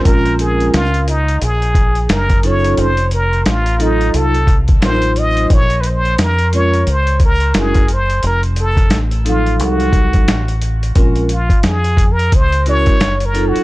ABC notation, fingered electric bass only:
X:1
M:4/4
L:1/16
Q:"Swing 16ths" 1/4=88
K:Bbm
V:1 name="Fingered electric bass" clef=bass
B,,,4 D,,4 B,,,4 G,,,4 | F,,,4 =A,,,4 C,,4 A,,,4 | B,,,4 F,,4 D,,4 G,,,4 | F,,,4 =A,,,4 C,,4 A,,,4 |
B,,,3 z F,,4 D,,3 z G,,,3 z |]